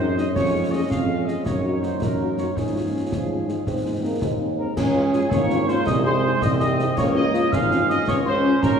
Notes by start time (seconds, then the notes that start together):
Already playing: F#2 G#3 C4 C5
0.17 G#3 C4 D#4 D#5, snare
0.35 F2 G#3 C#4 C#5, concert bass drum, snare, crash
0.54 G#3 C#4 G#4
0.71 G#3 C#4 G#4 D#5
0.90 F2 F5, concert bass drum, snare
1.09 G#3 C#4 G#4
1.26 G#3 C#4 G#4 D#5, snare
1.44 F#2 F#3 D#4 C#5, concert bass drum, snare
1.64 A#3 D#4 F#4
1.82 A#3 D#4 F#4 C5, snare
2.01 F#2 A#4, concert bass drum, snare
2.20 A#3 D#4 F#4
2.38 A#3 D#4 F#4 C#5, snare
2.56 G#2 F3 C#4 G#4, concert bass drum, snare
2.75 G#3 C#4 F4
2.93 G#3 C#4 F4
3.10 G#2 F3, concert bass drum, snare
3.31 G#3 C#4 F4
3.49 G#3 C#4 F4, snare
3.65 G#2 D#3 C4, concert bass drum, snare
3.85 G#3 C4 D#4
4.03 G#3 A#3 C4 D#4
4.20 D#2 G#3, concert bass drum, snare
4.40 G#3 C4 D#4
4.59 G#3 C4 D#4 A#4 A#5
4.75 C#2 C#4 G#4 G#5, concert bass drum, snare, crash
4.95 G#3 C#4 F4
5.12 G#3 C#4 F4 G#4 G#5, snare
5.30 G#1 A#3 C#5, concert bass drum, snare
5.34 C#6
5.50 G#3 C#4 F4, snare
5.67 G#3 C#4 F4 C5 C6, snare
5.85 C2 G#3 D#5 D#6, concert bass drum, snare
6.04 G#3 D#4 G#4 C5 C6
6.24 G#3 D#4 G#4
6.42 C2 C4 D#5 D#6, concert bass drum, snare
6.59 G#3 D#4 G#4 D#5 D#6, snare
6.78 G#3 D#4 G#4, snare
6.97 C#2 A#3 C#5 C#6, concert bass drum, snare, crash
7.15 G#3 C#4 F4 D#5 D#6
7.34 G#3 C#4 F4, snare
7.52 G#1 G#3 F5 F6, concert bass drum, snare
7.70 G#3 C#4 F4, snare
7.89 G#3 C#4 F4 D#5 D#6, snare
8.07 C#2 C#4 C#5 C#6, concert bass drum, snare
8.25 G#3 C#4 F4 C5 C6
8.43 G#3 C#4 F4
8.62 G#1 A#4 A#5, concert bass drum, snare